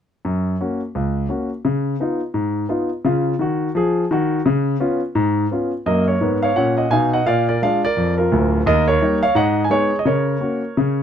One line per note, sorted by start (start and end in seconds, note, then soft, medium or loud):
0.25 0.54 F#2 medium
0.61 0.80 A#3 soft
0.61 0.80 C#4 soft
0.61 0.80 F#4 soft
0.95 1.25 C#2 medium
1.29 1.48 A#3 soft
1.29 1.48 C#4 soft
1.29 1.49 F#4 soft
1.65 1.95 C#3 medium
2.00 2.19 B3 soft
2.00 2.20 D#4 soft
2.00 2.20 F4 soft
2.34 2.64 G#2 medium
2.69 2.88 B3 soft
2.69 2.89 D#4 soft
2.69 2.89 F4 soft
3.05 3.33 C#3 medium
3.05 3.33 F4 medium
3.39 3.68 D#3 medium
3.39 3.69 F#4 medium
3.75 4.03 F3 medium
3.75 4.04 G#4 medium
4.11 4.39 D#3 medium
4.11 4.40 F#4 medium
4.46 4.75 C#3 medium
4.80 5.00 B3 medium
4.80 4.99 C#4 medium
4.80 5.00 F4 medium
5.15 5.45 G#2 medium
5.51 5.70 B3 soft
5.51 5.71 C#4 soft
5.51 5.71 F4 soft
5.86 6.14 F#2 medium
5.86 6.15 A#3 medium
5.86 6.06 A#4 medium
5.86 6.04 D#5 medium
6.08 6.40 A#4 soft
6.08 6.37 C#5 medium
6.21 6.49 G#2 medium
6.21 6.50 B3 medium
6.43 6.56 C#5 medium
6.43 6.54 F5 medium
6.56 6.84 A#2 medium
6.56 6.85 C#4 medium
6.56 6.76 C#5 soft
6.56 6.74 F#5 medium
6.77 6.90 D#5 medium
6.77 6.89 F#5 medium
6.90 7.18 B2 medium
6.90 7.19 D#4 medium
6.90 7.11 F5 medium
6.90 7.09 G#5 medium
7.13 7.26 D#5 medium
7.13 7.25 F#5 medium
7.26 7.56 A#2 medium
7.26 7.46 D5 medium
7.26 7.44 F5 medium
7.49 7.61 A#4 medium
7.49 7.60 D5 medium
7.62 7.81 G#3 soft
7.62 7.82 D4 soft
7.62 7.82 F4 soft
7.62 7.82 D5 medium
7.62 7.80 F5 medium
7.85 8.16 A#4 medium
7.85 8.13 D5 medium
7.97 8.26 F2 medium
8.18 8.64 F4 medium
8.18 8.59 A#4 medium
8.32 8.60 D1 medium
8.32 8.60 D2 medium
8.66 8.96 D#2 medium
8.66 8.87 A#4 medium
8.66 8.84 D#5 medium
8.88 9.21 A#4 medium
8.88 9.17 C#5 medium
9.01 9.20 G3 soft
9.01 9.21 A#3 soft
9.01 9.21 D#4 medium
9.23 9.36 C#5 medium
9.23 9.34 F5 medium
9.35 9.65 G#2 medium
9.35 9.63 D#5 medium
9.35 9.60 F#5 medium
9.64 9.71 G#5 medium
9.70 9.90 G#3 medium
9.70 9.90 B3 soft
9.70 9.90 D#4 soft
9.70 9.98 G#4 medium
9.70 9.95 C#5 medium
9.99 10.06 D#5 medium
10.05 10.36 C#3 medium
10.05 11.03 A#4 medium
10.05 11.03 C#5 medium
10.40 10.60 A#3 soft
10.40 10.61 C#4 soft
10.40 10.60 F#4 soft
10.77 11.03 C#3 medium